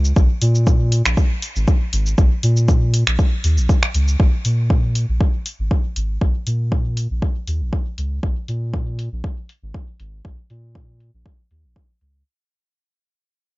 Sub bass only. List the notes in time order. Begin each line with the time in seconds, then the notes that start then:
Already playing: C#2
0.16 A#1
0.42 A#2
1.05 A#1
1.56 G#1
1.93 G#1
2.18 A#1
2.43 A#2
3.07 A#1
3.44 D#2
3.57 A#1
3.94 C#2
4.20 A#1
4.45 A#2
5.09 A#1
5.59 G#1
5.96 G#1
6.21 A#1
6.47 A#2
7.11 A#1
7.47 D#2
7.61 A#1
7.98 C#2
8.23 A#1
8.48 A#2
9.12 A#1
9.63 G#1
10.00 G#1
10.25 A#1
10.50 A#2
11.14 A#1
11.51 D#2
11.64 A#1
12.01 C#2